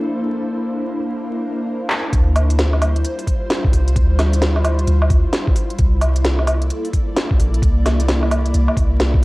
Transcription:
Already playing: A#3 D4 E4 A4 C5
0.29 A#4
1.90 clap
2.13 D2 G3 E4 F4 C5, kick, closed hi-hat
2.36 open hi-hat, low woodblock
2.50 closed hi-hat
2.59 snare, closed hi-hat
2.73 low woodblock
2.82 open hi-hat, low woodblock
2.96 closed hi-hat
3.05 closed hi-hat
3.19 open hi-hat
3.27 kick, open hi-hat
3.50 snare, closed hi-hat
3.65 kick
3.73 C2, open hi-hat
3.88 closed hi-hat
3.96 D2, kick, closed hi-hat
4.19 snare, open hi-hat, low woodblock
4.33 closed hi-hat
4.42 snare, closed hi-hat
4.56 low woodblock
4.65 open hi-hat, low woodblock
4.79 closed hi-hat
4.87 D2, closed hi-hat
5.02 low woodblock
5.10 D2, kick, open hi-hat
5.33 snare, closed hi-hat
5.47 kick
5.56 open hi-hat
5.70 closed hi-hat
5.79 C2 A#3 A4 D5, kick, closed hi-hat
6.01 open hi-hat, low woodblock
6.16 closed hi-hat
6.25 snare, closed hi-hat
6.39 low woodblock
6.47 open hi-hat, low woodblock
6.62 closed hi-hat
6.70 closed hi-hat
6.85 open hi-hat
6.93 kick, open hi-hat
7.17 snare, closed hi-hat
7.31 kick
7.39 A#1, open hi-hat
7.54 closed hi-hat
7.62 C2 G4, kick, closed hi-hat
7.86 snare, open hi-hat, low woodblock
8.00 closed hi-hat
8.08 snare, closed hi-hat
8.23 low woodblock
8.31 open hi-hat, low woodblock
8.46 closed hi-hat
8.54 C2, closed hi-hat
8.68 low woodblock
8.77 C2, kick, open hi-hat
9.00 snare, closed hi-hat
9.14 kick

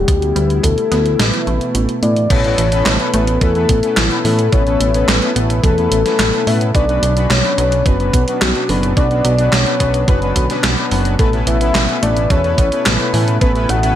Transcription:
Already playing: D3 G4
0.08 D2 B2 G3 B3 E4, kick, closed hi-hat
0.22 closed hi-hat
0.36 D2 G3, closed hi-hat
0.50 closed hi-hat
0.63 D2 B2 A4, kick, closed hi-hat
0.78 closed hi-hat
0.91 D2 B3, snare, closed hi-hat
1.06 closed hi-hat
1.19 A1 B2 E3 A3 B4, snare, closed hi-hat
1.33 closed hi-hat
1.47 A1 A3, closed hi-hat
1.61 closed hi-hat
1.75 A1 B2, closed hi-hat
1.89 closed hi-hat
2.03 A2 B3 D5, closed hi-hat
2.16 closed hi-hat
2.30 A1 B2 A3 B3 C#4 E4 A4 B4 C#5, kick, closed hi-hat, crash
2.44 B3 C#4 E4 A4 B4, closed hi-hat
2.58 A1 E3, closed hi-hat
2.72 B3 C#4 E4 A4 B4, closed hi-hat
2.86 A1 B2 B4, snare, clap, closed hi-hat
3.00 B3 C#4 E4 A4 B4, closed hi-hat
3.14 A1 A3 B3 C#4 E4 A4 B4, closed hi-hat
3.27 closed hi-hat
3.41 E2 B2 B3 C#4 E4 A4 B4, kick, closed hi-hat
3.55 B3 C#4 E4 A4 B4, closed hi-hat
3.69 A1 B3, kick, closed hi-hat
3.83 B3 C#4 E4 A4 B4, closed hi-hat
3.97 A1 B2 E4, snare, clap, closed hi-hat
4.11 B3 C#4 E4 A4 B4, closed hi-hat
4.25 A2 E3 B3 C#4 E4 A4 B4, open hi-hat
4.39 closed hi-hat
4.52 A1 B2 B3 C#4 E4 A4 B4 C#5, kick, closed hi-hat
4.66 B3 C#4 E4 A4 B4, closed hi-hat
4.80 A1 A3, closed hi-hat
4.94 B3 C#4 E4 A4 B4, closed hi-hat
5.08 A1 B2 B4, snare, clap, closed hi-hat
5.22 B3 C#4 E4 A4 B4, closed hi-hat
5.36 A1 B3 C#4 E4 A4 B4, closed hi-hat
5.50 closed hi-hat
5.63 E2 B2 B3 C#4 E4 A4 B4, kick, closed hi-hat
5.77 B3 C#4 E4 A4 B4, closed hi-hat
5.91 A1 E3, closed hi-hat
6.05 B3 C#4 E4 A4 B4, snare, closed hi-hat
6.19 A1 B2, snare, clap, closed hi-hat
6.33 B3 C#4 E4 A4 B4, closed hi-hat
6.47 A2 A3 B3 C#4 E4 A4 B4 E5, open hi-hat
6.61 closed hi-hat
6.75 B1 B2 F#3 B3 C#4 D4 F#4 B4 D5, kick, closed hi-hat
6.88 B3 C#4 D4 F#4 B4, closed hi-hat
7.02 B1 D3, closed hi-hat
7.16 B3 C#4 D4 F#4 B4, closed hi-hat
7.30 B1 B2 C#5, snare, clap, closed hi-hat
7.44 B3 C#4 D4 F#4 B4, closed hi-hat
7.58 B1 F#3 B3 C#4 D4 F#4 B4, closed hi-hat
7.72 closed hi-hat
7.86 F#1 B2 B3 C#4 D4 F#4 B4, kick, closed hi-hat
8.00 B3 C#4 D4 F#4 B4, closed hi-hat
8.13 B1 B3, kick, closed hi-hat
8.27 B3 C#4 D4 F#4 B4, closed hi-hat
8.41 B1 B2 F#4, snare, clap, closed hi-hat
8.55 B3 C#4 D4 F#4 B4, closed hi-hat
8.69 F#1 D3 B3 C#4 D4 F#4 B4, open hi-hat
8.83 closed hi-hat
8.97 B1 B2 B3 C#4 D4 F#4 B4 D5, kick, closed hi-hat
9.11 B3 C#4 D4 F#4 B4, closed hi-hat
9.24 B1 F#3, closed hi-hat
9.38 B3 C#4 D4 F#4 B4, closed hi-hat
9.52 B1 B2 C#5, snare, clap, closed hi-hat
9.66 B3 C#4 D4 F#4 B4, closed hi-hat
9.80 B1 B3 C#4 D4 F#4 B4, kick, closed hi-hat
9.94 closed hi-hat
10.08 F#1 B2 B3 C#4 D4 F#4 B4, kick, closed hi-hat
10.22 B3 C#4 D4 F#4 B4, closed hi-hat
10.36 B1 D3, kick, closed hi-hat
10.50 B3 C#4 D4 F#4 B4, snare, closed hi-hat
10.64 B1 B2, snare, clap, closed hi-hat
10.78 B3 C#4 D4 F#4 B4, closed hi-hat
10.91 F#1 F#3 B3 C#4 D4 F#4 B4, open hi-hat
11.05 closed hi-hat
11.19 A1 B2 A3 B3 C#4 E4 A4 B4, kick, closed hi-hat
11.33 B3 C#4 E4 A4 B4, closed hi-hat
11.47 A1 E3 E5, closed hi-hat
11.61 B3 C#4 E4 A4 B4, closed hi-hat
11.75 A1 B2, snare, clap, closed hi-hat
11.89 B3 C#4 E4 A4 B4, closed hi-hat
12.02 A1 A3 B3 C#4 E4 A4 B4 D5, closed hi-hat
12.17 closed hi-hat
12.30 E2 B2 B3 C#4 E4 A4 B4 C#5, kick, closed hi-hat
12.44 B3 C#4 E4 A4 B4, closed hi-hat
12.58 A1 B3, kick, closed hi-hat
12.72 B3 C#4 E4 A4 B4, closed hi-hat
12.86 A1 B2 B4, snare, clap, closed hi-hat
13.00 B3 C#4 E4 A4 B4, closed hi-hat
13.13 A2 E3 B3 C#4 E4 A4 B4, open hi-hat
13.28 closed hi-hat
13.41 A1 B2 B3 C#4 E4 A4 B4, kick, closed hi-hat
13.55 B3 C#4 E4 A4 B4, closed hi-hat
13.69 A1 A3 F#5, closed hi-hat
13.83 B3 C#4 E4 A4 B4, closed hi-hat

